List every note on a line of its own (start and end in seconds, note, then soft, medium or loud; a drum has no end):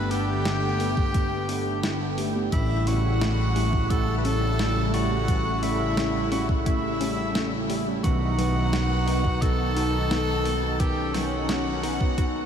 0.00 2.49 G1 medium
0.00 2.48 D3 medium
0.00 2.48 A3 medium
0.00 2.48 B3 medium
0.00 2.48 G4 medium
0.00 0.13 B4 loud
0.11 0.26 A3 medium
0.11 0.26 B3 medium
0.11 0.26 D4 medium
0.11 0.26 G4 loud
0.11 2.18 G4 loud
0.11 2.14 G5 loud
0.11 open hi-hat medium
0.45 0.55 A3 medium
0.45 0.55 B3 medium
0.45 0.55 D4 medium
0.45 0.55 A4 medium
0.45 snare loud
0.45 closed hi-hat medium
0.80 0.95 A3 loud
0.80 0.95 B3 medium
0.80 0.95 D4 medium
0.80 0.95 G4 loud
0.80 open hi-hat medium
0.97 1.12 A3 loud
0.97 1.12 B3 medium
0.97 1.12 D4 medium
0.97 1.12 G4 loud
0.97 kick loud
1.14 1.45 A3 medium
1.14 1.45 B3 medium
1.14 1.45 D4 medium
1.14 1.45 G4 loud
1.14 kick loud
1.14 closed hi-hat medium
1.49 1.79 A3 medium
1.49 1.79 B3 medium
1.49 1.79 D4 medium
1.49 1.79 G4 medium
1.49 open hi-hat medium
1.83 1.99 A3 medium
1.83 1.99 B3 medium
1.83 1.99 D4 medium
1.83 1.99 E4 loud
1.83 snare loud
1.83 closed hi-hat medium
2.18 2.31 A3 medium
2.18 2.31 B3 medium
2.18 2.31 D4 medium
2.18 2.31 G4 loud
2.18 open hi-hat medium
2.35 2.48 A3 medium
2.35 2.48 B3 medium
2.35 2.48 D4 medium
2.35 2.48 G4 loud
2.52 8.01 A1 medium
2.52 8.00 C#3 medium
2.52 2.83 E3 loud
2.52 8.00 G3 medium
2.52 8.00 A3 medium
2.52 2.83 A3 medium
2.52 2.83 C#4 medium
2.52 8.00 E4 medium
2.52 2.89 E4 loud
2.52 2.83 E4 medium
2.52 2.83 G4 loud
2.52 2.85 E5 loud
2.52 kick loud
2.52 closed hi-hat medium
2.87 3.18 G3 medium
2.87 3.02 A3 loud
2.87 3.02 C#4 medium
2.87 3.02 E4 medium
2.87 3.92 F#4 loud
2.87 3.02 G4 loud
2.87 3.86 F#5 loud
2.87 open hi-hat medium
3.21 3.31 A3 medium
3.21 3.40 A3 medium
3.21 3.31 C#4 medium
3.21 3.31 E4 medium
3.21 3.31 A4 medium
3.21 snare loud
3.21 closed hi-hat medium
3.56 3.70 A3 loud
3.56 3.86 C#4 medium
3.56 3.70 C#4 medium
3.56 3.70 E4 medium
3.56 3.70 G4 loud
3.56 open hi-hat medium
3.73 3.88 A3 medium
3.73 3.88 C#4 medium
3.73 3.88 E4 medium
3.73 3.88 G4 loud
3.73 kick loud
3.90 4.21 A3 medium
3.90 4.21 C#4 medium
3.90 4.09 E4 loud
3.90 4.21 E4 medium
3.90 4.21 G4 loud
3.90 4.17 A4 loud
3.90 4.16 A5 loud
3.90 kick loud
3.90 closed hi-hat medium
4.18 4.27 B4 medium
4.18 4.25 B5 medium
4.25 4.55 A3 medium
4.25 4.58 C#4 medium
4.25 4.55 C#4 medium
4.25 4.55 E4 medium
4.25 4.55 G4 medium
4.25 4.93 A4 loud
4.25 4.90 A5 loud
4.25 open hi-hat medium
4.59 4.74 A3 medium
4.59 4.92 A3 medium
4.59 4.74 C#4 medium
4.59 4.74 E4 medium
4.59 4.74 F#4 loud
4.59 snare loud
4.59 closed hi-hat medium
4.94 5.24 G3 medium
4.94 5.07 A3 medium
4.94 5.07 C#4 medium
4.94 5.07 E4 medium
4.94 5.64 F#4 loud
4.94 5.07 G4 loud
4.94 5.59 F#5 loud
4.94 open hi-hat medium
5.11 5.24 A3 medium
5.11 5.24 C#4 medium
5.11 5.24 E4 medium
5.11 5.24 G4 loud
5.28 5.59 E3 loud
5.28 5.59 G3 loud
5.28 5.59 A3 medium
5.28 5.59 C#4 medium
5.28 5.59 E4 medium
5.28 kick loud
5.28 closed hi-hat medium
5.63 5.93 G3 medium
5.63 5.78 A3 loud
5.63 5.78 C#4 medium
5.63 5.78 E4 medium
5.63 6.31 E4 loud
5.63 5.78 G4 loud
5.63 6.28 E5 loud
5.63 open hi-hat medium
5.97 6.07 A3 medium
5.97 6.16 A3 medium
5.97 6.07 C#4 medium
5.97 6.07 E4 medium
5.97 6.07 A4 medium
5.97 snare loud
5.97 closed hi-hat medium
6.32 6.46 A3 loud
6.32 6.62 C#4 medium
6.32 6.46 C#4 medium
6.32 6.46 E4 medium
6.32 6.47 F#4 medium
6.32 6.46 G4 loud
6.32 6.46 F#5 medium
6.32 open hi-hat medium
6.49 6.64 A3 loud
6.49 6.64 C#4 medium
6.49 6.64 E4 medium
6.49 6.64 G4 loud
6.49 kick loud
6.66 6.96 A3 medium
6.66 6.96 C#4 medium
6.66 6.84 E4 loud
6.66 6.96 E4 medium
6.66 7.66 E4 medium
6.66 6.96 G4 loud
6.66 7.66 E5 medium
6.66 kick loud
6.66 closed hi-hat medium
7.01 7.31 A3 medium
7.01 7.31 C#4 medium
7.01 7.33 C#4 medium
7.01 7.31 E4 medium
7.01 7.31 G4 medium
7.01 open hi-hat medium
7.35 7.50 A3 medium
7.35 7.68 A3 medium
7.35 7.50 C#4 medium
7.35 7.50 E4 medium
7.35 7.50 F#4 loud
7.35 snare loud
7.35 closed hi-hat medium
7.70 8.00 G3 medium
7.70 7.83 A3 medium
7.70 7.83 C#4 medium
7.70 7.83 E4 medium
7.70 7.83 G4 loud
7.70 open hi-hat medium
7.87 8.00 A3 medium
7.87 8.00 C#4 medium
7.87 8.00 E4 medium
7.87 8.00 G4 loud
8.04 12.46 B1 medium
8.04 12.46 D#3 medium
8.04 8.35 D#3 loud
8.04 10.77 B3 medium
8.04 8.34 B3 medium
8.04 8.34 D#4 medium
8.04 12.46 D#4 medium
8.04 9.43 F#4 loud
8.04 8.34 F#4 medium
8.04 8.34 B4 loud
8.04 9.38 F#5 loud
8.04 kick loud
8.04 closed hi-hat medium
8.38 8.69 F#3 medium
8.38 8.54 B3 loud
8.38 8.54 D#4 medium
8.38 8.54 F#4 medium
8.38 8.54 B4 loud
8.38 open hi-hat medium
8.73 8.91 B3 medium
8.73 8.82 B3 medium
8.73 8.82 D#4 medium
8.73 8.82 F#4 medium
8.73 8.82 C#5 medium
8.73 snare loud
8.73 closed hi-hat medium
9.07 9.22 B3 loud
9.07 9.22 D#4 medium
9.07 9.38 D#4 medium
9.07 9.22 F#4 medium
9.07 9.22 B4 loud
9.07 open hi-hat medium
9.25 9.39 B3 medium
9.25 9.39 D#4 medium
9.25 9.39 F#4 medium
9.25 9.39 B4 loud
9.25 kick loud
9.42 9.72 B3 medium
9.42 9.72 D#4 medium
9.42 9.60 F#4 loud
9.42 9.72 F#4 medium
9.42 10.81 A4 loud
9.42 9.72 B4 loud
9.42 10.76 A5 loud
9.42 kick loud
9.42 closed hi-hat medium
9.76 10.07 B3 medium
9.76 10.09 D#4 medium
9.76 10.07 D#4 medium
9.76 10.07 F#4 medium
9.76 10.07 B4 medium
9.76 open hi-hat medium
10.11 10.44 B3 medium
10.11 10.26 B3 medium
10.11 10.26 D#4 medium
10.11 10.26 F#4 medium
10.11 10.26 A4 loud
10.11 snare loud
10.11 closed hi-hat medium
10.45 10.76 F#3 medium
10.45 10.59 B3 medium
10.45 10.59 D#4 medium
10.45 10.59 F#4 medium
10.45 10.59 B4 loud
10.45 open hi-hat medium
10.63 10.76 B3 medium
10.63 10.76 D#4 medium
10.63 10.76 F#4 medium
10.63 10.76 B4 loud
10.80 11.11 D#3 loud
10.80 11.10 B3 medium
10.80 12.46 C#4 medium
10.80 11.10 D#4 medium
10.80 11.16 G4 loud
10.80 11.10 B4 medium
10.80 11.12 G5 loud
10.80 kick loud
10.80 closed hi-hat medium
11.14 11.45 F#3 medium
11.14 11.29 B3 loud
11.14 11.29 D#4 medium
11.14 12.46 F#4 loud
11.14 11.29 F#4 medium
11.14 11.29 B4 loud
11.14 12.46 F#5 loud
11.14 snare medium
11.14 open hi-hat medium
11.49 11.58 B3 medium
11.49 11.67 B3 medium
11.49 11.58 D#4 medium
11.49 11.58 F#4 medium
11.49 11.58 C#5 medium
11.49 snare loud
11.49 closed hi-hat loud
11.83 11.98 B3 medium
11.83 12.14 D#4 medium
11.83 11.98 D#4 medium
11.83 11.98 F#4 medium
11.83 11.98 B4 loud
11.83 open hi-hat medium
12.01 12.15 B3 medium
12.01 12.15 D#4 medium
12.01 12.15 F#4 medium
12.01 12.15 B4 loud
12.01 kick loud
12.18 12.46 B3 medium
12.18 12.46 D#4 medium
12.18 12.36 F#4 loud
12.18 12.46 F#4 medium
12.18 12.46 B4 loud
12.18 kick loud
12.18 closed hi-hat medium